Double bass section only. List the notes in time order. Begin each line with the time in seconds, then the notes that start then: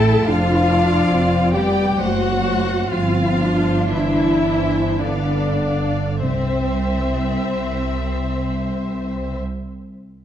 Already playing: A1
0.25 F1
1.10 F1
1.98 F#1
2.91 G1
3.92 G1
5.01 G1
6.22 C2